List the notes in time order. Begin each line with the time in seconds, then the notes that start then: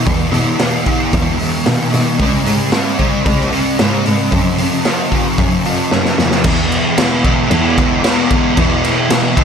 0.06 E2 B2 E3, kick, open hi-hat
0.31 B2 E3, open hi-hat
0.58 E2 B2 E3, snare, open hi-hat
0.86 E2 B2 E3, kick, open hi-hat
1.12 E2 B2 E3, kick, open hi-hat
1.38 B2 E3, open hi-hat
1.65 E2 B2 E3, snare, open hi-hat
1.91 B2 E3, snare, open hi-hat
2.18 C#2 C#3 G#3 C#4, kick, open hi-hat
2.44 G#2 G#3 C#4, open hi-hat
2.71 C#3 G#3 C#4, snare, open hi-hat
2.98 C#3 G#3 C#4, kick, open hi-hat
3.24 C#2 C#3 G#3 C#4, kick, open hi-hat
3.40 snare
3.51 G#3 C#4, open hi-hat
3.78 G#2 C#3 G#3 C#4, snare, open hi-hat
4.05 G#2 G#3 C#4, snare, open hi-hat
4.31 F#2 C#3 F#3, kick, open hi-hat
4.58 C#3 F#3, open hi-hat
4.84 F#2 C#3 F#3, snare, open hi-hat
5.11 F#2 C#3 F#3, kick, open hi-hat
5.38 F#2 C#3 F#3, kick, open hi-hat
5.65 C#3 F#3, open hi-hat
5.91 F#2 C#3 F#3, snare
6.05 snare
6.18 E2 C#3 F#3, snare
6.31 snare
6.44 E2 B2 E3, kick, crash
6.72 crash
6.98 E2 B2 E3, snare, crash
7.24 B2 E3, kick, crash
7.51 E2 B2 E3, crash
7.78 kick, snare, crash
8.03 E2 B2 E3, snare, crash
8.30 kick, crash
8.56 E2 B2 E3, kick, crash
8.84 snare, crash
9.09 E2 B2 E3, snare, crash
9.36 B2 E3, kick, crash